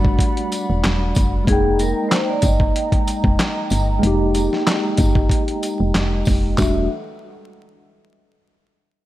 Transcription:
Already playing: G1 G3 A3 D4 F#4 D5 F#5 B5
0.05 kick
0.19 kick, closed hi-hat
0.37 closed hi-hat
0.52 closed hi-hat, tambourine
0.70 E1
0.84 E1, snare, clap, closed hi-hat
1.15 F#1, kick, closed hi-hat, tambourine
1.44 F1 G#3 A#3 G#4 D#5 G5 A#5, kick, closed hi-hat
1.50 D#4 G5
1.79 A#4, closed hi-hat, tambourine
2.09 C5, snare, clap, closed hi-hat
2.30 D5
2.42 G1 D#5, kick, closed hi-hat, tambourine
2.60 kick
2.76 closed hi-hat
2.92 kick, closed hi-hat
3.07 closed hi-hat, tambourine
3.24 F1, kick
3.39 snare, clap, closed hi-hat
3.70 G1, closed hi-hat, tambourine
3.99 G#3 A#3
4.03 F1 D#4 G4, closed hi-hat
4.34 closed hi-hat, tambourine
4.53 snare
4.67 snare, clap, closed hi-hat
4.97 G1, kick, closed hi-hat, tambourine
5.15 kick
5.29 kick, closed hi-hat
5.48 closed hi-hat
5.63 closed hi-hat, tambourine
5.80 F1
5.94 F1, snare, clap, closed hi-hat
6.25 F1, kick, open hi-hat, tambourine
6.58 E1 E3 G3 A3 D4 F#4 A4 E5 F#5, kick, clap, tambourine

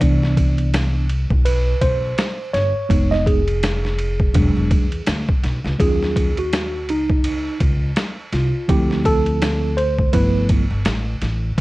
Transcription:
Already playing: D5
0.01 C2 E3 B3 D4, kick, ride
0.23 snare
0.37 kick, ride
0.58 ride
0.74 snare, hi-hat pedal, ride
1.09 ride
1.30 B1, kick
1.45 B4, ride
1.81 B1 C5, kick, ride
2.18 snare, hi-hat pedal, ride
2.53 G1 C#5, snare, ride
2.89 F1 G#3 B3 D#4, kick, ride
3.11 D#5, snare
3.26 G#4, kick, ride
3.48 ride
3.63 snare, hi-hat pedal, ride
3.85 snare
3.99 ride
4.20 kick
4.34 E1 F#3 G#3 D4, kick, ride
4.56 E1
4.71 E2, kick, ride
4.92 ride
5.07 D2, snare, hi-hat pedal, ride
5.29 kick
5.43 B1, snare, ride
5.64 C#2, snare
5.78 D#2 F#3 C#4 F4 G#4, kick, ride
6.03 snare
6.16 kick, ride
6.37 F#4, ride
6.53 snare, hi-hat pedal, ride
6.88 C#2 D#4, ride
7.10 kick
7.24 ride
7.60 C#2, kick, ride
7.96 snare, hi-hat pedal, ride
8.33 C2 F4, snare, ride
8.68 D2 F3 C4 E4 G4, kick, ride
8.91 snare
9.05 A4, kick, ride
9.26 ride
9.42 snare, hi-hat pedal, ride
9.77 C5, ride
9.99 kick
10.13 G1 F3 A3 B3 E4 B4, kick, ride
10.49 kick, ride
10.71 G1
10.85 A1, snare, hi-hat pedal, ride
11.22 A1, snare, ride
11.58 C2

